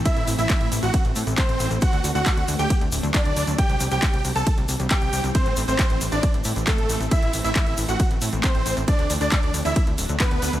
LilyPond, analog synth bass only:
\new Staff \with { instrumentName = "Analog synth bass" } { \clef bass \time 4/4 \key a \dorian \tempo 4 = 136 r16 a,,16 a,,16 a,,16 r16 a,,16 a,,16 a,,16 r16 a,,16 a,16 a,,16 r16 a,,16 a,,16 a,,16 | r16 d,16 d,16 d,16 r16 d,16 d,16 d,16 r16 d,16 d,,16 d,16 r16 d,16 d,16 d,16 | r16 c,16 c,16 c,16 r16 c,16 c,16 c,16 r16 c,16 c,16 c,16 r16 c,16 c,16 c,16 | r16 a,,16 a,,16 a,,16 r16 a,,16 a,,16 a,,16 r16 a,,16 a,16 a,,16 r16 a,,16 a,,16 a,,16 |
r16 a,,16 a,,16 a,,16 r16 a,,16 a,,16 a,,16 r16 a,,16 a,16 a,,16 r16 a,,16 a,,16 a,,16 | r16 d,16 d,16 d,16 r16 d,16 d,16 d,16 r16 d,16 d,,16 d,16 r16 d,16 d,16 d,16 | }